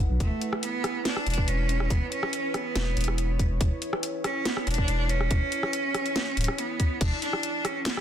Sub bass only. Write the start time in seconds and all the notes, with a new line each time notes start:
0.10 B1
0.20 E1
1.26 E1
1.48 E1
1.90 E1
2.75 E1
2.97 E1
3.61 E1
4.67 E1
4.88 E1
5.31 E1
6.37 D1
7.01 E1